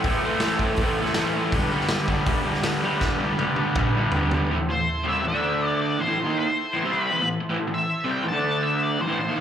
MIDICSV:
0, 0, Header, 1, 6, 480
1, 0, Start_track
1, 0, Key_signature, 0, "minor"
1, 0, Tempo, 372902
1, 59, Time_signature, 4, 2, 24, 8
1, 12105, End_track
2, 0, Start_track
2, 0, Title_t, "Lead electric guitar"
2, 0, Program_c, 0, 29
2, 6062, Note_on_c, 0, 72, 96
2, 6499, Note_off_c, 0, 72, 0
2, 6549, Note_on_c, 0, 76, 99
2, 6760, Note_off_c, 0, 76, 0
2, 6800, Note_on_c, 0, 76, 107
2, 7453, Note_off_c, 0, 76, 0
2, 7483, Note_on_c, 0, 74, 91
2, 7728, Note_on_c, 0, 72, 88
2, 7731, Note_off_c, 0, 74, 0
2, 8212, Note_off_c, 0, 72, 0
2, 8227, Note_on_c, 0, 72, 79
2, 8999, Note_off_c, 0, 72, 0
2, 8999, Note_on_c, 0, 71, 79
2, 9368, Note_off_c, 0, 71, 0
2, 9964, Note_on_c, 0, 76, 97
2, 10422, Note_off_c, 0, 76, 0
2, 10438, Note_on_c, 0, 79, 91
2, 10652, Note_off_c, 0, 79, 0
2, 10662, Note_on_c, 0, 81, 102
2, 11106, Note_on_c, 0, 76, 95
2, 11133, Note_off_c, 0, 81, 0
2, 11365, Note_off_c, 0, 76, 0
2, 11365, Note_on_c, 0, 74, 90
2, 11598, Note_off_c, 0, 74, 0
2, 11598, Note_on_c, 0, 72, 95
2, 11823, Note_off_c, 0, 72, 0
2, 11839, Note_on_c, 0, 72, 86
2, 12060, Note_on_c, 0, 76, 75
2, 12077, Note_off_c, 0, 72, 0
2, 12105, Note_off_c, 0, 76, 0
2, 12105, End_track
3, 0, Start_track
3, 0, Title_t, "Transistor combo organ"
3, 0, Program_c, 1, 18
3, 0, Note_on_c, 1, 64, 65
3, 0, Note_on_c, 1, 69, 60
3, 0, Note_on_c, 1, 72, 83
3, 1927, Note_off_c, 1, 64, 0
3, 1935, Note_off_c, 1, 69, 0
3, 1938, Note_on_c, 1, 62, 66
3, 1941, Note_off_c, 1, 72, 0
3, 1956, Note_on_c, 1, 67, 65
3, 1968, Note_on_c, 1, 71, 79
3, 5732, Note_off_c, 1, 62, 0
3, 5741, Note_off_c, 1, 67, 0
3, 5747, Note_off_c, 1, 71, 0
3, 5788, Note_on_c, 1, 64, 77
3, 5802, Note_on_c, 1, 69, 64
3, 5806, Note_on_c, 1, 72, 70
3, 6853, Note_off_c, 1, 64, 0
3, 6860, Note_off_c, 1, 69, 0
3, 6862, Note_off_c, 1, 72, 0
3, 6886, Note_on_c, 1, 69, 58
3, 6887, Note_on_c, 1, 74, 70
3, 6888, Note_on_c, 1, 62, 70
3, 7726, Note_off_c, 1, 69, 0
3, 7726, Note_off_c, 1, 74, 0
3, 7727, Note_off_c, 1, 62, 0
3, 7733, Note_on_c, 1, 64, 57
3, 7756, Note_on_c, 1, 69, 51
3, 7763, Note_on_c, 1, 72, 58
3, 10687, Note_off_c, 1, 64, 0
3, 10698, Note_off_c, 1, 69, 0
3, 10702, Note_off_c, 1, 72, 0
3, 10763, Note_on_c, 1, 62, 65
3, 10763, Note_on_c, 1, 69, 62
3, 10776, Note_on_c, 1, 74, 76
3, 11563, Note_off_c, 1, 69, 0
3, 11566, Note_on_c, 1, 64, 63
3, 11579, Note_on_c, 1, 69, 55
3, 11592, Note_off_c, 1, 62, 0
3, 11597, Note_on_c, 1, 72, 67
3, 11599, Note_off_c, 1, 74, 0
3, 12105, Note_off_c, 1, 64, 0
3, 12105, Note_off_c, 1, 69, 0
3, 12105, Note_off_c, 1, 72, 0
3, 12105, End_track
4, 0, Start_track
4, 0, Title_t, "Overdriven electric guitar"
4, 0, Program_c, 2, 29
4, 70, Note_on_c, 2, 45, 99
4, 82, Note_on_c, 2, 52, 103
4, 96, Note_on_c, 2, 57, 113
4, 291, Note_off_c, 2, 45, 0
4, 306, Note_on_c, 2, 45, 89
4, 307, Note_off_c, 2, 52, 0
4, 310, Note_off_c, 2, 57, 0
4, 323, Note_on_c, 2, 52, 91
4, 326, Note_on_c, 2, 57, 97
4, 544, Note_off_c, 2, 45, 0
4, 550, Note_off_c, 2, 52, 0
4, 560, Note_on_c, 2, 45, 86
4, 563, Note_off_c, 2, 57, 0
4, 565, Note_on_c, 2, 52, 101
4, 579, Note_on_c, 2, 57, 89
4, 768, Note_off_c, 2, 45, 0
4, 783, Note_on_c, 2, 45, 88
4, 784, Note_off_c, 2, 52, 0
4, 799, Note_on_c, 2, 52, 98
4, 802, Note_off_c, 2, 57, 0
4, 818, Note_on_c, 2, 57, 111
4, 1026, Note_off_c, 2, 45, 0
4, 1029, Note_off_c, 2, 52, 0
4, 1042, Note_on_c, 2, 45, 106
4, 1044, Note_on_c, 2, 52, 104
4, 1046, Note_off_c, 2, 57, 0
4, 1062, Note_on_c, 2, 57, 125
4, 1263, Note_off_c, 2, 45, 0
4, 1279, Note_on_c, 2, 45, 88
4, 1283, Note_off_c, 2, 52, 0
4, 1293, Note_off_c, 2, 57, 0
4, 1299, Note_on_c, 2, 52, 83
4, 1308, Note_on_c, 2, 57, 94
4, 1487, Note_off_c, 2, 45, 0
4, 1502, Note_on_c, 2, 45, 88
4, 1504, Note_off_c, 2, 52, 0
4, 1513, Note_off_c, 2, 57, 0
4, 1520, Note_on_c, 2, 52, 110
4, 1529, Note_on_c, 2, 57, 112
4, 1732, Note_off_c, 2, 45, 0
4, 1741, Note_off_c, 2, 52, 0
4, 1748, Note_on_c, 2, 45, 83
4, 1749, Note_off_c, 2, 57, 0
4, 1756, Note_on_c, 2, 52, 97
4, 1764, Note_on_c, 2, 57, 95
4, 1965, Note_off_c, 2, 45, 0
4, 1970, Note_off_c, 2, 52, 0
4, 1974, Note_off_c, 2, 57, 0
4, 1982, Note_on_c, 2, 43, 105
4, 1993, Note_on_c, 2, 50, 110
4, 1999, Note_on_c, 2, 55, 124
4, 2208, Note_off_c, 2, 50, 0
4, 2213, Note_off_c, 2, 43, 0
4, 2218, Note_on_c, 2, 43, 84
4, 2223, Note_on_c, 2, 50, 104
4, 2228, Note_off_c, 2, 55, 0
4, 2233, Note_on_c, 2, 55, 107
4, 2427, Note_off_c, 2, 43, 0
4, 2433, Note_off_c, 2, 50, 0
4, 2433, Note_on_c, 2, 43, 81
4, 2448, Note_on_c, 2, 50, 84
4, 2451, Note_off_c, 2, 55, 0
4, 2456, Note_on_c, 2, 55, 89
4, 2668, Note_off_c, 2, 50, 0
4, 2673, Note_off_c, 2, 43, 0
4, 2678, Note_on_c, 2, 43, 89
4, 2683, Note_on_c, 2, 50, 95
4, 2703, Note_off_c, 2, 55, 0
4, 2708, Note_on_c, 2, 55, 94
4, 2898, Note_off_c, 2, 43, 0
4, 2910, Note_off_c, 2, 50, 0
4, 2913, Note_on_c, 2, 43, 99
4, 2920, Note_off_c, 2, 55, 0
4, 2925, Note_on_c, 2, 50, 93
4, 2935, Note_on_c, 2, 55, 109
4, 3138, Note_off_c, 2, 43, 0
4, 3148, Note_off_c, 2, 50, 0
4, 3153, Note_on_c, 2, 43, 76
4, 3156, Note_off_c, 2, 55, 0
4, 3164, Note_on_c, 2, 50, 74
4, 3172, Note_on_c, 2, 55, 89
4, 3358, Note_off_c, 2, 43, 0
4, 3368, Note_off_c, 2, 50, 0
4, 3373, Note_on_c, 2, 43, 102
4, 3383, Note_off_c, 2, 55, 0
4, 3383, Note_on_c, 2, 50, 108
4, 3398, Note_on_c, 2, 55, 108
4, 3618, Note_off_c, 2, 43, 0
4, 3628, Note_off_c, 2, 50, 0
4, 3633, Note_on_c, 2, 43, 83
4, 3644, Note_on_c, 2, 50, 91
4, 3646, Note_off_c, 2, 55, 0
4, 3662, Note_on_c, 2, 55, 100
4, 3867, Note_off_c, 2, 43, 0
4, 3871, Note_off_c, 2, 50, 0
4, 3877, Note_off_c, 2, 55, 0
4, 3883, Note_on_c, 2, 43, 88
4, 3887, Note_on_c, 2, 50, 99
4, 3892, Note_on_c, 2, 55, 107
4, 4092, Note_off_c, 2, 43, 0
4, 4106, Note_off_c, 2, 50, 0
4, 4108, Note_on_c, 2, 43, 89
4, 4122, Note_on_c, 2, 50, 96
4, 4124, Note_off_c, 2, 55, 0
4, 4139, Note_on_c, 2, 55, 99
4, 4338, Note_off_c, 2, 43, 0
4, 4353, Note_on_c, 2, 43, 86
4, 4356, Note_off_c, 2, 50, 0
4, 4357, Note_off_c, 2, 55, 0
4, 4371, Note_on_c, 2, 50, 80
4, 4373, Note_on_c, 2, 55, 102
4, 4591, Note_off_c, 2, 43, 0
4, 4607, Note_on_c, 2, 43, 89
4, 4609, Note_off_c, 2, 50, 0
4, 4621, Note_off_c, 2, 55, 0
4, 4624, Note_on_c, 2, 50, 98
4, 4637, Note_on_c, 2, 55, 95
4, 4838, Note_off_c, 2, 43, 0
4, 4841, Note_off_c, 2, 50, 0
4, 4854, Note_on_c, 2, 43, 100
4, 4856, Note_off_c, 2, 55, 0
4, 4857, Note_on_c, 2, 50, 99
4, 4871, Note_on_c, 2, 55, 105
4, 5068, Note_off_c, 2, 43, 0
4, 5083, Note_on_c, 2, 43, 69
4, 5089, Note_off_c, 2, 50, 0
4, 5095, Note_off_c, 2, 55, 0
4, 5105, Note_on_c, 2, 50, 85
4, 5110, Note_on_c, 2, 55, 92
4, 5317, Note_off_c, 2, 43, 0
4, 5326, Note_off_c, 2, 50, 0
4, 5333, Note_on_c, 2, 43, 101
4, 5341, Note_off_c, 2, 55, 0
4, 5341, Note_on_c, 2, 50, 97
4, 5357, Note_on_c, 2, 55, 100
4, 5563, Note_off_c, 2, 43, 0
4, 5571, Note_off_c, 2, 50, 0
4, 5578, Note_on_c, 2, 43, 90
4, 5579, Note_off_c, 2, 55, 0
4, 5587, Note_on_c, 2, 50, 79
4, 5594, Note_on_c, 2, 55, 103
4, 5791, Note_off_c, 2, 50, 0
4, 5795, Note_off_c, 2, 43, 0
4, 5796, Note_on_c, 2, 45, 94
4, 5801, Note_off_c, 2, 55, 0
4, 5806, Note_on_c, 2, 52, 100
4, 5893, Note_off_c, 2, 45, 0
4, 5893, Note_off_c, 2, 52, 0
4, 5908, Note_on_c, 2, 45, 64
4, 5908, Note_on_c, 2, 52, 71
4, 6015, Note_off_c, 2, 45, 0
4, 6021, Note_off_c, 2, 52, 0
4, 6031, Note_on_c, 2, 45, 62
4, 6037, Note_on_c, 2, 52, 72
4, 6228, Note_off_c, 2, 45, 0
4, 6231, Note_off_c, 2, 52, 0
4, 6486, Note_on_c, 2, 48, 81
4, 6501, Note_on_c, 2, 55, 91
4, 6509, Note_on_c, 2, 60, 88
4, 6724, Note_off_c, 2, 48, 0
4, 6729, Note_on_c, 2, 45, 66
4, 6735, Note_off_c, 2, 55, 0
4, 6740, Note_on_c, 2, 52, 71
4, 6748, Note_off_c, 2, 60, 0
4, 6858, Note_off_c, 2, 45, 0
4, 6863, Note_on_c, 2, 50, 93
4, 6868, Note_off_c, 2, 52, 0
4, 6873, Note_on_c, 2, 57, 92
4, 6874, Note_on_c, 2, 62, 114
4, 7691, Note_off_c, 2, 50, 0
4, 7696, Note_on_c, 2, 45, 64
4, 7699, Note_off_c, 2, 57, 0
4, 7704, Note_on_c, 2, 52, 68
4, 7712, Note_off_c, 2, 62, 0
4, 7801, Note_off_c, 2, 45, 0
4, 7813, Note_off_c, 2, 52, 0
4, 7816, Note_on_c, 2, 45, 95
4, 7828, Note_on_c, 2, 52, 108
4, 7939, Note_off_c, 2, 45, 0
4, 7943, Note_off_c, 2, 52, 0
4, 7955, Note_on_c, 2, 45, 58
4, 7958, Note_on_c, 2, 52, 83
4, 8033, Note_off_c, 2, 45, 0
4, 8038, Note_on_c, 2, 51, 91
4, 8043, Note_off_c, 2, 52, 0
4, 8048, Note_on_c, 2, 58, 96
4, 8062, Note_on_c, 2, 63, 93
4, 8287, Note_off_c, 2, 51, 0
4, 8299, Note_off_c, 2, 58, 0
4, 8307, Note_off_c, 2, 63, 0
4, 8671, Note_on_c, 2, 45, 105
4, 8691, Note_on_c, 2, 52, 107
4, 8790, Note_off_c, 2, 45, 0
4, 8795, Note_on_c, 2, 48, 90
4, 8802, Note_off_c, 2, 52, 0
4, 8809, Note_on_c, 2, 55, 104
4, 8827, Note_on_c, 2, 60, 106
4, 9146, Note_off_c, 2, 48, 0
4, 9151, Note_on_c, 2, 52, 101
4, 9161, Note_off_c, 2, 55, 0
4, 9171, Note_off_c, 2, 60, 0
4, 9173, Note_on_c, 2, 59, 108
4, 9273, Note_off_c, 2, 52, 0
4, 9283, Note_off_c, 2, 59, 0
4, 9285, Note_on_c, 2, 45, 65
4, 9295, Note_on_c, 2, 52, 71
4, 9479, Note_off_c, 2, 45, 0
4, 9484, Note_off_c, 2, 52, 0
4, 9649, Note_on_c, 2, 45, 93
4, 9663, Note_on_c, 2, 52, 112
4, 9744, Note_off_c, 2, 45, 0
4, 9753, Note_off_c, 2, 52, 0
4, 9760, Note_on_c, 2, 45, 68
4, 9768, Note_on_c, 2, 52, 73
4, 9865, Note_off_c, 2, 45, 0
4, 9868, Note_off_c, 2, 52, 0
4, 9880, Note_on_c, 2, 45, 65
4, 9883, Note_on_c, 2, 52, 74
4, 10078, Note_off_c, 2, 45, 0
4, 10079, Note_off_c, 2, 52, 0
4, 10354, Note_on_c, 2, 48, 85
4, 10369, Note_on_c, 2, 60, 92
4, 10375, Note_on_c, 2, 55, 89
4, 10593, Note_off_c, 2, 48, 0
4, 10598, Note_off_c, 2, 55, 0
4, 10598, Note_on_c, 2, 45, 67
4, 10603, Note_on_c, 2, 52, 76
4, 10604, Note_off_c, 2, 60, 0
4, 10704, Note_off_c, 2, 45, 0
4, 10709, Note_on_c, 2, 50, 105
4, 10722, Note_off_c, 2, 52, 0
4, 10727, Note_on_c, 2, 57, 108
4, 10730, Note_on_c, 2, 62, 105
4, 11558, Note_off_c, 2, 50, 0
4, 11567, Note_off_c, 2, 57, 0
4, 11568, Note_off_c, 2, 62, 0
4, 11576, Note_on_c, 2, 45, 69
4, 11592, Note_on_c, 2, 52, 70
4, 11669, Note_off_c, 2, 45, 0
4, 11682, Note_off_c, 2, 52, 0
4, 11684, Note_on_c, 2, 45, 96
4, 11697, Note_on_c, 2, 52, 99
4, 11805, Note_off_c, 2, 45, 0
4, 11811, Note_off_c, 2, 52, 0
4, 11850, Note_on_c, 2, 45, 68
4, 11856, Note_on_c, 2, 52, 68
4, 11951, Note_off_c, 2, 45, 0
4, 11952, Note_off_c, 2, 52, 0
4, 11956, Note_on_c, 2, 51, 87
4, 11957, Note_on_c, 2, 58, 94
4, 11981, Note_on_c, 2, 63, 98
4, 12105, Note_off_c, 2, 51, 0
4, 12105, Note_off_c, 2, 58, 0
4, 12105, Note_off_c, 2, 63, 0
4, 12105, End_track
5, 0, Start_track
5, 0, Title_t, "Muted overdriven electric guitar strokes"
5, 8292, Note_on_c, 9, 29, 56
5, 8421, Note_off_c, 9, 29, 0
5, 9540, Note_on_c, 9, 29, 55
5, 9668, Note_off_c, 9, 29, 0
5, 12105, End_track
6, 0, Start_track
6, 0, Title_t, "Drums"
6, 51, Note_on_c, 9, 46, 77
6, 54, Note_on_c, 9, 36, 119
6, 180, Note_off_c, 9, 46, 0
6, 182, Note_off_c, 9, 36, 0
6, 516, Note_on_c, 9, 38, 111
6, 519, Note_on_c, 9, 46, 62
6, 645, Note_off_c, 9, 38, 0
6, 647, Note_off_c, 9, 46, 0
6, 763, Note_on_c, 9, 36, 94
6, 892, Note_off_c, 9, 36, 0
6, 980, Note_on_c, 9, 46, 66
6, 1000, Note_on_c, 9, 36, 120
6, 1109, Note_off_c, 9, 46, 0
6, 1129, Note_off_c, 9, 36, 0
6, 1351, Note_on_c, 9, 38, 35
6, 1473, Note_off_c, 9, 38, 0
6, 1473, Note_on_c, 9, 38, 123
6, 1476, Note_on_c, 9, 46, 65
6, 1602, Note_off_c, 9, 38, 0
6, 1604, Note_off_c, 9, 46, 0
6, 1961, Note_on_c, 9, 36, 117
6, 1963, Note_on_c, 9, 46, 62
6, 2090, Note_off_c, 9, 36, 0
6, 2092, Note_off_c, 9, 46, 0
6, 2324, Note_on_c, 9, 38, 33
6, 2427, Note_off_c, 9, 38, 0
6, 2427, Note_on_c, 9, 38, 113
6, 2430, Note_on_c, 9, 46, 58
6, 2556, Note_off_c, 9, 38, 0
6, 2559, Note_off_c, 9, 46, 0
6, 2677, Note_on_c, 9, 36, 84
6, 2805, Note_off_c, 9, 36, 0
6, 2911, Note_on_c, 9, 46, 66
6, 2916, Note_on_c, 9, 36, 122
6, 3040, Note_off_c, 9, 46, 0
6, 3045, Note_off_c, 9, 36, 0
6, 3272, Note_on_c, 9, 38, 35
6, 3393, Note_off_c, 9, 38, 0
6, 3393, Note_on_c, 9, 38, 121
6, 3395, Note_on_c, 9, 46, 66
6, 3521, Note_off_c, 9, 38, 0
6, 3524, Note_off_c, 9, 46, 0
6, 3875, Note_on_c, 9, 38, 69
6, 3877, Note_on_c, 9, 36, 115
6, 4003, Note_off_c, 9, 38, 0
6, 4006, Note_off_c, 9, 36, 0
6, 4362, Note_on_c, 9, 48, 83
6, 4491, Note_off_c, 9, 48, 0
6, 4585, Note_on_c, 9, 48, 76
6, 4714, Note_off_c, 9, 48, 0
6, 4833, Note_on_c, 9, 47, 95
6, 4835, Note_on_c, 9, 36, 126
6, 4961, Note_off_c, 9, 47, 0
6, 4964, Note_off_c, 9, 36, 0
6, 5299, Note_on_c, 9, 43, 107
6, 5428, Note_off_c, 9, 43, 0
6, 5553, Note_on_c, 9, 43, 92
6, 5682, Note_off_c, 9, 43, 0
6, 12105, End_track
0, 0, End_of_file